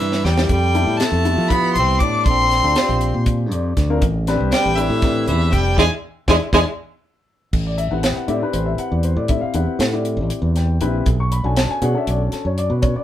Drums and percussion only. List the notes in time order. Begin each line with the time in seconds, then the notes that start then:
0.12 snare
0.25 snare
0.38 snare
0.49 kick, closed hi-hat
0.75 closed hi-hat
1.00 snare, closed hi-hat
1.25 closed hi-hat
1.50 kick, closed hi-hat
1.76 closed hi-hat
2.00 kick, closed hi-hat
2.26 kick, closed hi-hat
2.51 snare, closed hi-hat
2.76 snare, closed hi-hat
3.01 closed hi-hat
3.26 kick, closed hi-hat
3.52 closed hi-hat
3.77 kick, snare, closed hi-hat
4.02 kick, closed hi-hat
4.27 snare, closed hi-hat
4.52 snare, closed hi-hat
4.78 closed hi-hat
5.02 kick, snare, closed hi-hat
5.28 closed hi-hat
5.53 kick, snare, closed hi-hat
5.78 kick, snare
6.28 kick, snare
6.53 kick, snare
7.53 kick, crash
7.78 closed hi-hat
8.03 snare, closed hi-hat
8.28 closed hi-hat
8.53 closed hi-hat
8.78 closed hi-hat
9.03 closed hi-hat
9.28 kick, closed hi-hat
9.54 closed hi-hat
9.80 snare, closed hi-hat
10.05 closed hi-hat
10.30 closed hi-hat
10.56 snare, closed hi-hat
10.81 closed hi-hat
11.06 kick, closed hi-hat
11.32 closed hi-hat
11.57 snare, closed hi-hat
11.82 closed hi-hat
12.07 closed hi-hat
12.32 snare, closed hi-hat
12.58 closed hi-hat
12.82 kick, closed hi-hat